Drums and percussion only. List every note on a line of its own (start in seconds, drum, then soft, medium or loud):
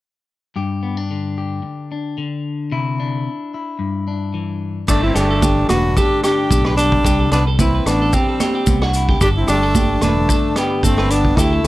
4.88 kick medium
4.88 cross-stick medium
4.88 crash medium
4.88 muted conga soft
4.88 maracas medium
5.15 cross-stick medium
5.15 closed hi-hat soft
5.15 maracas medium
5.42 kick medium
5.42 high conga medium
5.42 maracas medium
5.69 cross-stick medium
5.69 closed hi-hat medium
5.69 muted conga soft
5.69 high conga medium
5.69 maracas medium
5.97 kick medium
5.97 muted conga soft
5.97 maracas medium
6.24 cross-stick medium
6.24 closed hi-hat soft
6.24 muted conga soft
6.24 maracas medium
6.51 kick medium
6.51 high conga medium
6.51 maracas medium
6.65 cross-stick medium
6.77 closed hi-hat soft
6.77 maracas medium
6.92 kick medium
7.04 kick medium
7.04 cross-stick medium
7.04 muted conga soft
7.04 maracas medium
7.31 cross-stick medium
7.31 closed hi-hat soft
7.31 maracas medium
7.59 kick medium
7.59 high conga medium
7.59 low conga medium
7.59 maracas medium
7.86 cross-stick medium
7.86 closed hi-hat soft
7.86 muted conga soft
7.86 maracas medium
8.13 kick medium
8.13 muted conga soft
8.13 maracas medium
8.40 cross-stick medium
8.40 closed hi-hat soft
8.40 muted conga soft
8.40 high conga medium
8.40 maracas medium
8.66 kick medium
8.66 high conga medium
8.66 maracas medium
8.82 cross-stick medium
8.94 closed hi-hat soft
8.94 maracas medium
9.09 kick medium
9.21 kick medium
9.21 cross-stick medium
9.21 muted conga soft
9.21 maracas medium
9.48 cross-stick medium
9.48 closed hi-hat soft
9.48 maracas medium
9.75 kick medium
9.75 high conga medium
9.75 maracas medium
10.01 cross-stick medium
10.01 closed hi-hat soft
10.01 muted conga soft
10.01 high conga medium
10.01 maracas medium
10.29 kick medium
10.29 maracas medium
10.56 cross-stick medium
10.56 closed hi-hat soft
10.56 muted conga soft
10.56 maracas medium
10.83 kick medium
10.83 high conga medium
10.83 maracas medium
10.98 cross-stick medium
11.10 closed hi-hat soft
11.10 maracas soft
11.25 kick medium
11.37 kick medium
11.37 cross-stick medium
11.37 muted conga soft
11.37 maracas medium